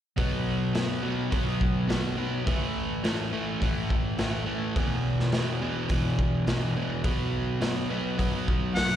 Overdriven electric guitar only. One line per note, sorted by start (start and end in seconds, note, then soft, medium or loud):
0.17 0.73 B2 medium
0.17 0.74 F#3 medium
0.17 0.74 B3 medium
0.74 1.01 B2 medium
0.74 1.02 F#3 medium
0.74 1.02 B3 medium
1.02 1.29 B2 medium
1.02 1.30 F#3 medium
1.02 1.31 B3 medium
1.30 1.87 B2 medium
1.30 1.88 F#3 medium
1.30 1.88 B3 medium
1.88 2.16 B2 medium
1.88 2.17 F#3 medium
1.88 2.17 B3 medium
2.17 2.45 B2 medium
2.17 2.45 F#3 medium
2.17 2.45 B3 medium
2.46 3.02 A2 medium
2.46 3.03 E3 medium
2.46 3.04 A3 medium
3.03 3.31 A2 medium
3.03 3.32 E3 medium
3.03 3.32 A3 medium
3.32 3.59 A2 medium
3.32 3.60 E3 medium
3.32 3.61 A3 medium
3.61 4.17 A2 medium
3.61 4.17 E3 medium
3.61 4.18 A3 medium
4.18 4.45 A2 medium
4.18 4.46 E3 medium
4.18 4.46 A3 medium
4.46 4.74 A2 medium
4.46 4.74 E3 medium
4.46 4.74 A3 medium
4.76 5.31 E2 medium
4.76 5.32 B2 medium
4.76 5.33 E3 medium
5.33 5.60 E2 medium
5.33 5.60 B2 medium
5.33 5.61 E3 medium
5.61 5.89 E2 medium
5.61 5.89 B2 medium
5.61 5.90 E3 medium
5.90 6.46 E2 medium
5.90 6.47 B2 medium
5.90 6.47 E3 medium
6.47 6.74 E2 medium
6.47 6.75 B2 medium
6.47 6.76 E3 medium
6.76 7.03 E2 medium
6.76 7.02 B2 medium
6.76 7.04 E3 medium
7.03 7.60 B2 medium
7.03 7.60 F#3 medium
7.03 7.61 B3 medium
7.61 7.88 B2 medium
7.61 7.89 F#3 medium
7.61 7.90 B3 medium
7.89 8.16 B2 medium
7.89 8.17 F#3 medium
7.89 8.18 B3 medium
8.17 8.74 B2 medium
8.17 8.74 F#3 medium
8.17 8.75 B3 medium
8.75 8.96 B2 medium
8.75 8.96 F#3 medium
8.75 8.96 B3 medium